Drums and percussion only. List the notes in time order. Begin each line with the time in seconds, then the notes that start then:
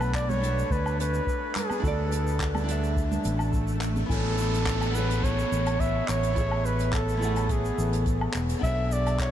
0.01 low woodblock, shaker
0.14 kick, clap, shaker
0.29 high conga, low conga, shaker
0.43 closed hi-hat, shaker
0.59 shaker
0.70 kick, shaker
0.86 low woodblock, shaker
1.00 closed hi-hat, high conga, shaker
1.14 shaker
1.27 kick, shaker
1.55 clap, closed hi-hat, low conga, shaker
1.70 high conga, low woodblock, shaker
1.83 kick, shaker
2.12 closed hi-hat, shaker
2.27 shaker
2.40 kick, clap, shaker
2.55 high conga, low conga, low woodblock, shaker
2.68 closed hi-hat, shaker
2.84 shaker
2.97 kick, shaker
3.12 low conga, shaker
3.24 closed hi-hat, high conga, shaker
3.39 low woodblock, shaker
3.53 kick, shaker
3.68 shaker
3.81 clap, closed hi-hat, shaker
3.96 high conga, shaker
4.10 kick, closed hi-hat, shaker
4.38 shaker
4.54 closed hi-hat, shaker
4.66 kick, clap, closed hi-hat, shaker
4.81 low woodblock, shaker
4.95 shaker
5.10 closed hi-hat, shaker
5.23 kick, closed hi-hat, shaker
5.39 shaker
5.53 shaker
5.66 closed hi-hat, low woodblock, shaker
5.80 kick, closed hi-hat, shaker
6.08 clap, shaker
6.23 closed hi-hat, shaker
6.36 kick, closed hi-hat, shaker
6.51 low woodblock
6.66 shaker
6.79 closed hi-hat, shaker
6.93 kick, clap, closed hi-hat, shaker
7.09 shaker
7.22 shaker
7.36 closed hi-hat, low woodblock, shaker
7.49 kick, closed hi-hat, shaker
7.65 shaker
7.79 shaker
7.93 closed hi-hat, shaker
8.06 kick, closed hi-hat, shaker
8.21 low woodblock
8.34 clap, shaker
8.49 closed hi-hat, shaker
8.63 kick, closed hi-hat, shaker
8.92 shaker
9.06 closed hi-hat, low woodblock, shaker
9.19 kick, clap, closed hi-hat, shaker